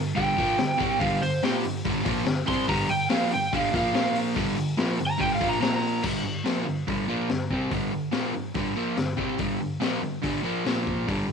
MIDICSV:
0, 0, Header, 1, 4, 480
1, 0, Start_track
1, 0, Key_signature, -2, "minor"
1, 0, Tempo, 419287
1, 1155, Time_signature, 4, 2, 24, 8
1, 12963, End_track
2, 0, Start_track
2, 0, Title_t, "Electric slide guitar"
2, 0, Program_c, 0, 29
2, 185, Note_on_c, 0, 79, 123
2, 1122, Note_off_c, 0, 79, 0
2, 1138, Note_on_c, 0, 77, 103
2, 1379, Note_off_c, 0, 77, 0
2, 1392, Note_on_c, 0, 72, 104
2, 1627, Note_off_c, 0, 72, 0
2, 1647, Note_on_c, 0, 67, 114
2, 1875, Note_off_c, 0, 67, 0
2, 2842, Note_on_c, 0, 84, 106
2, 3071, Note_off_c, 0, 84, 0
2, 3079, Note_on_c, 0, 82, 100
2, 3310, Note_off_c, 0, 82, 0
2, 3313, Note_on_c, 0, 79, 91
2, 3546, Note_off_c, 0, 79, 0
2, 3558, Note_on_c, 0, 77, 110
2, 3788, Note_off_c, 0, 77, 0
2, 3820, Note_on_c, 0, 79, 88
2, 4040, Note_off_c, 0, 79, 0
2, 4072, Note_on_c, 0, 77, 97
2, 4285, Note_off_c, 0, 77, 0
2, 4312, Note_on_c, 0, 77, 105
2, 4758, Note_off_c, 0, 77, 0
2, 5798, Note_on_c, 0, 82, 110
2, 5949, Note_off_c, 0, 82, 0
2, 5956, Note_on_c, 0, 79, 109
2, 6108, Note_off_c, 0, 79, 0
2, 6123, Note_on_c, 0, 77, 86
2, 6272, Note_off_c, 0, 77, 0
2, 6285, Note_on_c, 0, 82, 88
2, 6418, Note_off_c, 0, 82, 0
2, 6432, Note_on_c, 0, 82, 89
2, 6586, Note_off_c, 0, 82, 0
2, 6598, Note_on_c, 0, 82, 99
2, 6904, Note_off_c, 0, 82, 0
2, 12963, End_track
3, 0, Start_track
3, 0, Title_t, "Overdriven electric guitar"
3, 0, Program_c, 1, 29
3, 0, Note_on_c, 1, 43, 67
3, 0, Note_on_c, 1, 50, 76
3, 144, Note_off_c, 1, 43, 0
3, 146, Note_off_c, 1, 50, 0
3, 174, Note_on_c, 1, 43, 92
3, 188, Note_on_c, 1, 50, 92
3, 196, Note_on_c, 1, 55, 108
3, 417, Note_off_c, 1, 50, 0
3, 418, Note_off_c, 1, 43, 0
3, 422, Note_on_c, 1, 46, 95
3, 428, Note_off_c, 1, 55, 0
3, 438, Note_on_c, 1, 53, 104
3, 449, Note_on_c, 1, 58, 99
3, 661, Note_off_c, 1, 46, 0
3, 669, Note_off_c, 1, 53, 0
3, 669, Note_on_c, 1, 50, 77
3, 673, Note_on_c, 1, 43, 60
3, 675, Note_off_c, 1, 58, 0
3, 864, Note_off_c, 1, 50, 0
3, 866, Note_off_c, 1, 43, 0
3, 887, Note_on_c, 1, 48, 89
3, 892, Note_on_c, 1, 55, 96
3, 911, Note_on_c, 1, 60, 91
3, 1134, Note_off_c, 1, 48, 0
3, 1137, Note_off_c, 1, 55, 0
3, 1139, Note_on_c, 1, 43, 98
3, 1145, Note_on_c, 1, 50, 101
3, 1146, Note_off_c, 1, 60, 0
3, 1154, Note_on_c, 1, 55, 105
3, 1380, Note_off_c, 1, 43, 0
3, 1383, Note_off_c, 1, 50, 0
3, 1388, Note_off_c, 1, 55, 0
3, 1401, Note_on_c, 1, 43, 75
3, 1402, Note_on_c, 1, 50, 70
3, 1591, Note_off_c, 1, 43, 0
3, 1591, Note_off_c, 1, 50, 0
3, 1635, Note_on_c, 1, 46, 93
3, 1650, Note_on_c, 1, 53, 103
3, 1659, Note_on_c, 1, 58, 109
3, 1868, Note_off_c, 1, 46, 0
3, 1876, Note_off_c, 1, 53, 0
3, 1880, Note_off_c, 1, 58, 0
3, 1881, Note_on_c, 1, 43, 69
3, 1891, Note_on_c, 1, 50, 80
3, 2070, Note_off_c, 1, 43, 0
3, 2075, Note_off_c, 1, 50, 0
3, 2119, Note_on_c, 1, 43, 103
3, 2137, Note_on_c, 1, 50, 96
3, 2137, Note_on_c, 1, 55, 115
3, 2327, Note_off_c, 1, 50, 0
3, 2331, Note_on_c, 1, 46, 102
3, 2350, Note_off_c, 1, 43, 0
3, 2351, Note_off_c, 1, 55, 0
3, 2355, Note_on_c, 1, 58, 109
3, 2356, Note_on_c, 1, 53, 98
3, 2576, Note_off_c, 1, 46, 0
3, 2580, Note_on_c, 1, 43, 61
3, 2582, Note_on_c, 1, 50, 72
3, 2588, Note_off_c, 1, 53, 0
3, 2588, Note_off_c, 1, 58, 0
3, 2779, Note_off_c, 1, 43, 0
3, 2780, Note_off_c, 1, 50, 0
3, 2821, Note_on_c, 1, 48, 91
3, 2830, Note_on_c, 1, 55, 97
3, 2838, Note_on_c, 1, 60, 100
3, 3061, Note_off_c, 1, 48, 0
3, 3065, Note_off_c, 1, 55, 0
3, 3069, Note_off_c, 1, 60, 0
3, 3069, Note_on_c, 1, 43, 94
3, 3074, Note_on_c, 1, 50, 92
3, 3082, Note_on_c, 1, 55, 97
3, 3291, Note_off_c, 1, 43, 0
3, 3297, Note_off_c, 1, 50, 0
3, 3305, Note_on_c, 1, 43, 67
3, 3311, Note_off_c, 1, 55, 0
3, 3311, Note_on_c, 1, 50, 78
3, 3501, Note_off_c, 1, 43, 0
3, 3504, Note_off_c, 1, 50, 0
3, 3545, Note_on_c, 1, 46, 101
3, 3551, Note_on_c, 1, 53, 115
3, 3566, Note_on_c, 1, 58, 113
3, 3782, Note_off_c, 1, 46, 0
3, 3785, Note_off_c, 1, 53, 0
3, 3792, Note_off_c, 1, 58, 0
3, 3810, Note_on_c, 1, 50, 74
3, 3813, Note_on_c, 1, 43, 71
3, 3994, Note_off_c, 1, 50, 0
3, 3995, Note_off_c, 1, 43, 0
3, 4039, Note_on_c, 1, 43, 107
3, 4044, Note_on_c, 1, 50, 105
3, 4059, Note_on_c, 1, 55, 99
3, 4267, Note_off_c, 1, 50, 0
3, 4268, Note_off_c, 1, 43, 0
3, 4271, Note_on_c, 1, 46, 93
3, 4278, Note_off_c, 1, 55, 0
3, 4288, Note_on_c, 1, 53, 102
3, 4290, Note_on_c, 1, 58, 104
3, 4501, Note_off_c, 1, 46, 0
3, 4505, Note_off_c, 1, 53, 0
3, 4514, Note_off_c, 1, 58, 0
3, 4515, Note_on_c, 1, 46, 99
3, 4519, Note_on_c, 1, 53, 95
3, 4534, Note_on_c, 1, 58, 95
3, 4986, Note_off_c, 1, 46, 0
3, 4986, Note_on_c, 1, 43, 96
3, 4988, Note_off_c, 1, 53, 0
3, 4995, Note_off_c, 1, 58, 0
3, 4996, Note_on_c, 1, 50, 104
3, 5013, Note_on_c, 1, 55, 118
3, 5214, Note_off_c, 1, 43, 0
3, 5217, Note_off_c, 1, 50, 0
3, 5227, Note_on_c, 1, 43, 67
3, 5231, Note_on_c, 1, 50, 79
3, 5235, Note_off_c, 1, 55, 0
3, 5421, Note_off_c, 1, 43, 0
3, 5423, Note_off_c, 1, 50, 0
3, 5466, Note_on_c, 1, 46, 99
3, 5473, Note_on_c, 1, 53, 116
3, 5482, Note_on_c, 1, 58, 106
3, 5701, Note_off_c, 1, 46, 0
3, 5704, Note_off_c, 1, 53, 0
3, 5707, Note_on_c, 1, 43, 70
3, 5709, Note_off_c, 1, 58, 0
3, 5715, Note_on_c, 1, 50, 76
3, 5900, Note_off_c, 1, 43, 0
3, 5904, Note_off_c, 1, 50, 0
3, 5932, Note_on_c, 1, 43, 100
3, 5944, Note_on_c, 1, 50, 98
3, 5949, Note_on_c, 1, 55, 119
3, 6167, Note_off_c, 1, 50, 0
3, 6172, Note_on_c, 1, 46, 89
3, 6173, Note_off_c, 1, 43, 0
3, 6182, Note_off_c, 1, 55, 0
3, 6187, Note_on_c, 1, 53, 104
3, 6198, Note_on_c, 1, 58, 100
3, 6394, Note_off_c, 1, 46, 0
3, 6402, Note_off_c, 1, 53, 0
3, 6408, Note_on_c, 1, 46, 100
3, 6416, Note_on_c, 1, 53, 99
3, 6423, Note_off_c, 1, 58, 0
3, 6436, Note_on_c, 1, 58, 107
3, 6891, Note_off_c, 1, 46, 0
3, 6895, Note_off_c, 1, 53, 0
3, 6904, Note_on_c, 1, 43, 92
3, 6905, Note_off_c, 1, 58, 0
3, 6911, Note_on_c, 1, 50, 97
3, 6921, Note_on_c, 1, 55, 96
3, 7138, Note_off_c, 1, 50, 0
3, 7140, Note_off_c, 1, 43, 0
3, 7148, Note_off_c, 1, 55, 0
3, 7151, Note_on_c, 1, 43, 60
3, 7152, Note_on_c, 1, 50, 70
3, 7342, Note_off_c, 1, 43, 0
3, 7343, Note_off_c, 1, 50, 0
3, 7380, Note_on_c, 1, 46, 91
3, 7396, Note_on_c, 1, 53, 91
3, 7401, Note_on_c, 1, 58, 99
3, 7618, Note_off_c, 1, 46, 0
3, 7624, Note_on_c, 1, 50, 64
3, 7625, Note_off_c, 1, 53, 0
3, 7628, Note_off_c, 1, 58, 0
3, 7631, Note_on_c, 1, 43, 67
3, 7819, Note_off_c, 1, 50, 0
3, 7822, Note_off_c, 1, 43, 0
3, 7871, Note_on_c, 1, 43, 95
3, 7881, Note_on_c, 1, 50, 94
3, 7883, Note_on_c, 1, 55, 102
3, 8095, Note_off_c, 1, 50, 0
3, 8099, Note_on_c, 1, 46, 86
3, 8103, Note_off_c, 1, 43, 0
3, 8109, Note_off_c, 1, 55, 0
3, 8113, Note_on_c, 1, 53, 99
3, 8120, Note_on_c, 1, 58, 92
3, 8337, Note_off_c, 1, 46, 0
3, 8344, Note_off_c, 1, 53, 0
3, 8348, Note_off_c, 1, 58, 0
3, 8366, Note_on_c, 1, 43, 65
3, 8367, Note_on_c, 1, 50, 71
3, 8550, Note_off_c, 1, 43, 0
3, 8551, Note_off_c, 1, 50, 0
3, 8594, Note_on_c, 1, 48, 89
3, 8613, Note_on_c, 1, 55, 81
3, 8620, Note_on_c, 1, 60, 88
3, 8825, Note_off_c, 1, 48, 0
3, 8826, Note_on_c, 1, 43, 88
3, 8835, Note_off_c, 1, 55, 0
3, 8835, Note_on_c, 1, 50, 87
3, 8838, Note_off_c, 1, 60, 0
3, 8848, Note_on_c, 1, 55, 107
3, 9051, Note_off_c, 1, 43, 0
3, 9061, Note_off_c, 1, 50, 0
3, 9065, Note_on_c, 1, 43, 63
3, 9072, Note_off_c, 1, 55, 0
3, 9075, Note_on_c, 1, 50, 66
3, 9260, Note_off_c, 1, 43, 0
3, 9265, Note_off_c, 1, 50, 0
3, 9293, Note_on_c, 1, 46, 90
3, 9311, Note_on_c, 1, 53, 104
3, 9312, Note_on_c, 1, 58, 103
3, 9535, Note_off_c, 1, 46, 0
3, 9544, Note_off_c, 1, 53, 0
3, 9544, Note_off_c, 1, 58, 0
3, 9546, Note_on_c, 1, 43, 60
3, 9552, Note_on_c, 1, 50, 73
3, 9741, Note_off_c, 1, 43, 0
3, 9744, Note_off_c, 1, 50, 0
3, 9786, Note_on_c, 1, 43, 94
3, 9797, Note_on_c, 1, 50, 89
3, 9806, Note_on_c, 1, 55, 105
3, 10022, Note_off_c, 1, 43, 0
3, 10024, Note_off_c, 1, 50, 0
3, 10028, Note_on_c, 1, 46, 93
3, 10030, Note_off_c, 1, 55, 0
3, 10035, Note_on_c, 1, 53, 99
3, 10042, Note_on_c, 1, 58, 105
3, 10263, Note_off_c, 1, 46, 0
3, 10266, Note_off_c, 1, 53, 0
3, 10269, Note_on_c, 1, 43, 57
3, 10270, Note_off_c, 1, 58, 0
3, 10276, Note_on_c, 1, 50, 70
3, 10462, Note_off_c, 1, 43, 0
3, 10466, Note_off_c, 1, 50, 0
3, 10496, Note_on_c, 1, 48, 92
3, 10508, Note_on_c, 1, 55, 93
3, 10517, Note_on_c, 1, 60, 89
3, 10737, Note_off_c, 1, 48, 0
3, 10743, Note_off_c, 1, 55, 0
3, 10747, Note_off_c, 1, 60, 0
3, 10750, Note_on_c, 1, 50, 88
3, 10752, Note_on_c, 1, 43, 90
3, 10763, Note_on_c, 1, 55, 93
3, 10978, Note_off_c, 1, 43, 0
3, 10984, Note_off_c, 1, 50, 0
3, 10990, Note_off_c, 1, 55, 0
3, 10992, Note_on_c, 1, 43, 63
3, 10999, Note_on_c, 1, 50, 69
3, 11184, Note_off_c, 1, 43, 0
3, 11187, Note_off_c, 1, 50, 0
3, 11221, Note_on_c, 1, 46, 94
3, 11232, Note_on_c, 1, 53, 104
3, 11240, Note_on_c, 1, 58, 107
3, 11459, Note_off_c, 1, 46, 0
3, 11465, Note_off_c, 1, 53, 0
3, 11469, Note_off_c, 1, 58, 0
3, 11469, Note_on_c, 1, 43, 70
3, 11475, Note_on_c, 1, 50, 73
3, 11662, Note_off_c, 1, 43, 0
3, 11665, Note_off_c, 1, 50, 0
3, 11705, Note_on_c, 1, 43, 91
3, 11721, Note_on_c, 1, 50, 99
3, 11726, Note_on_c, 1, 55, 106
3, 11939, Note_off_c, 1, 50, 0
3, 11941, Note_off_c, 1, 43, 0
3, 11943, Note_on_c, 1, 46, 88
3, 11950, Note_off_c, 1, 55, 0
3, 11955, Note_on_c, 1, 53, 92
3, 11965, Note_on_c, 1, 58, 102
3, 12180, Note_off_c, 1, 46, 0
3, 12186, Note_off_c, 1, 53, 0
3, 12191, Note_off_c, 1, 58, 0
3, 12197, Note_on_c, 1, 46, 93
3, 12208, Note_on_c, 1, 53, 93
3, 12221, Note_on_c, 1, 58, 104
3, 12667, Note_off_c, 1, 46, 0
3, 12669, Note_on_c, 1, 43, 84
3, 12672, Note_off_c, 1, 53, 0
3, 12679, Note_off_c, 1, 58, 0
3, 12682, Note_on_c, 1, 50, 92
3, 12692, Note_on_c, 1, 55, 96
3, 12903, Note_off_c, 1, 43, 0
3, 12903, Note_off_c, 1, 50, 0
3, 12914, Note_off_c, 1, 55, 0
3, 12915, Note_on_c, 1, 43, 64
3, 12917, Note_on_c, 1, 50, 69
3, 12963, Note_off_c, 1, 43, 0
3, 12963, Note_off_c, 1, 50, 0
3, 12963, End_track
4, 0, Start_track
4, 0, Title_t, "Drums"
4, 201, Note_on_c, 9, 36, 103
4, 202, Note_on_c, 9, 46, 74
4, 315, Note_off_c, 9, 36, 0
4, 317, Note_off_c, 9, 46, 0
4, 440, Note_on_c, 9, 36, 109
4, 448, Note_on_c, 9, 46, 57
4, 555, Note_off_c, 9, 36, 0
4, 563, Note_off_c, 9, 46, 0
4, 668, Note_on_c, 9, 46, 76
4, 672, Note_on_c, 9, 38, 105
4, 782, Note_off_c, 9, 46, 0
4, 787, Note_off_c, 9, 38, 0
4, 922, Note_on_c, 9, 36, 108
4, 927, Note_on_c, 9, 46, 59
4, 1036, Note_off_c, 9, 36, 0
4, 1042, Note_off_c, 9, 46, 0
4, 1157, Note_on_c, 9, 46, 79
4, 1161, Note_on_c, 9, 36, 111
4, 1272, Note_off_c, 9, 46, 0
4, 1275, Note_off_c, 9, 36, 0
4, 1401, Note_on_c, 9, 46, 59
4, 1515, Note_off_c, 9, 46, 0
4, 1638, Note_on_c, 9, 46, 88
4, 1643, Note_on_c, 9, 38, 121
4, 1753, Note_off_c, 9, 46, 0
4, 1757, Note_off_c, 9, 38, 0
4, 1872, Note_on_c, 9, 46, 65
4, 1986, Note_off_c, 9, 46, 0
4, 2118, Note_on_c, 9, 46, 85
4, 2122, Note_on_c, 9, 36, 102
4, 2232, Note_off_c, 9, 46, 0
4, 2236, Note_off_c, 9, 36, 0
4, 2351, Note_on_c, 9, 46, 66
4, 2359, Note_on_c, 9, 36, 110
4, 2465, Note_off_c, 9, 46, 0
4, 2473, Note_off_c, 9, 36, 0
4, 2590, Note_on_c, 9, 46, 85
4, 2595, Note_on_c, 9, 38, 111
4, 2705, Note_off_c, 9, 46, 0
4, 2709, Note_off_c, 9, 38, 0
4, 2831, Note_on_c, 9, 46, 66
4, 2842, Note_on_c, 9, 36, 109
4, 2945, Note_off_c, 9, 46, 0
4, 2956, Note_off_c, 9, 36, 0
4, 3070, Note_on_c, 9, 46, 90
4, 3081, Note_on_c, 9, 36, 118
4, 3184, Note_off_c, 9, 46, 0
4, 3195, Note_off_c, 9, 36, 0
4, 3307, Note_on_c, 9, 46, 61
4, 3421, Note_off_c, 9, 46, 0
4, 3546, Note_on_c, 9, 46, 93
4, 3551, Note_on_c, 9, 38, 121
4, 3661, Note_off_c, 9, 46, 0
4, 3666, Note_off_c, 9, 38, 0
4, 3792, Note_on_c, 9, 46, 63
4, 3907, Note_off_c, 9, 46, 0
4, 4042, Note_on_c, 9, 36, 101
4, 4045, Note_on_c, 9, 46, 82
4, 4156, Note_off_c, 9, 36, 0
4, 4160, Note_off_c, 9, 46, 0
4, 4281, Note_on_c, 9, 36, 112
4, 4283, Note_on_c, 9, 46, 59
4, 4396, Note_off_c, 9, 36, 0
4, 4397, Note_off_c, 9, 46, 0
4, 4519, Note_on_c, 9, 46, 80
4, 4523, Note_on_c, 9, 38, 118
4, 4633, Note_off_c, 9, 46, 0
4, 4638, Note_off_c, 9, 38, 0
4, 4756, Note_on_c, 9, 46, 62
4, 4871, Note_off_c, 9, 46, 0
4, 4987, Note_on_c, 9, 46, 80
4, 4995, Note_on_c, 9, 36, 113
4, 5102, Note_off_c, 9, 46, 0
4, 5109, Note_off_c, 9, 36, 0
4, 5226, Note_on_c, 9, 46, 57
4, 5341, Note_off_c, 9, 46, 0
4, 5474, Note_on_c, 9, 46, 90
4, 5478, Note_on_c, 9, 38, 120
4, 5588, Note_off_c, 9, 46, 0
4, 5593, Note_off_c, 9, 38, 0
4, 5717, Note_on_c, 9, 46, 60
4, 5832, Note_off_c, 9, 46, 0
4, 5957, Note_on_c, 9, 36, 109
4, 5962, Note_on_c, 9, 46, 84
4, 6072, Note_off_c, 9, 36, 0
4, 6077, Note_off_c, 9, 46, 0
4, 6196, Note_on_c, 9, 36, 106
4, 6199, Note_on_c, 9, 46, 61
4, 6310, Note_off_c, 9, 36, 0
4, 6314, Note_off_c, 9, 46, 0
4, 6437, Note_on_c, 9, 46, 81
4, 6442, Note_on_c, 9, 38, 113
4, 6551, Note_off_c, 9, 46, 0
4, 6556, Note_off_c, 9, 38, 0
4, 6676, Note_on_c, 9, 46, 70
4, 6791, Note_off_c, 9, 46, 0
4, 6907, Note_on_c, 9, 49, 115
4, 6915, Note_on_c, 9, 36, 117
4, 7021, Note_off_c, 9, 49, 0
4, 7029, Note_off_c, 9, 36, 0
4, 7389, Note_on_c, 9, 46, 61
4, 7394, Note_on_c, 9, 38, 107
4, 7504, Note_off_c, 9, 46, 0
4, 7508, Note_off_c, 9, 38, 0
4, 7879, Note_on_c, 9, 36, 114
4, 7880, Note_on_c, 9, 46, 52
4, 7993, Note_off_c, 9, 36, 0
4, 7994, Note_off_c, 9, 46, 0
4, 8351, Note_on_c, 9, 46, 53
4, 8355, Note_on_c, 9, 38, 101
4, 8465, Note_off_c, 9, 46, 0
4, 8470, Note_off_c, 9, 38, 0
4, 8593, Note_on_c, 9, 36, 78
4, 8707, Note_off_c, 9, 36, 0
4, 8830, Note_on_c, 9, 46, 55
4, 8832, Note_on_c, 9, 36, 115
4, 8945, Note_off_c, 9, 46, 0
4, 8946, Note_off_c, 9, 36, 0
4, 9300, Note_on_c, 9, 46, 59
4, 9305, Note_on_c, 9, 38, 119
4, 9415, Note_off_c, 9, 46, 0
4, 9419, Note_off_c, 9, 38, 0
4, 9781, Note_on_c, 9, 46, 60
4, 9790, Note_on_c, 9, 36, 116
4, 9896, Note_off_c, 9, 46, 0
4, 9904, Note_off_c, 9, 36, 0
4, 10272, Note_on_c, 9, 46, 59
4, 10276, Note_on_c, 9, 38, 105
4, 10386, Note_off_c, 9, 46, 0
4, 10391, Note_off_c, 9, 38, 0
4, 10514, Note_on_c, 9, 36, 84
4, 10628, Note_off_c, 9, 36, 0
4, 10742, Note_on_c, 9, 46, 62
4, 10752, Note_on_c, 9, 36, 116
4, 10857, Note_off_c, 9, 46, 0
4, 10867, Note_off_c, 9, 36, 0
4, 11235, Note_on_c, 9, 46, 61
4, 11240, Note_on_c, 9, 38, 108
4, 11350, Note_off_c, 9, 46, 0
4, 11354, Note_off_c, 9, 38, 0
4, 11714, Note_on_c, 9, 46, 61
4, 11720, Note_on_c, 9, 36, 108
4, 11829, Note_off_c, 9, 46, 0
4, 11835, Note_off_c, 9, 36, 0
4, 12206, Note_on_c, 9, 46, 56
4, 12210, Note_on_c, 9, 38, 107
4, 12320, Note_off_c, 9, 46, 0
4, 12325, Note_off_c, 9, 38, 0
4, 12446, Note_on_c, 9, 36, 80
4, 12561, Note_off_c, 9, 36, 0
4, 12690, Note_on_c, 9, 46, 56
4, 12691, Note_on_c, 9, 36, 111
4, 12805, Note_off_c, 9, 46, 0
4, 12806, Note_off_c, 9, 36, 0
4, 12963, End_track
0, 0, End_of_file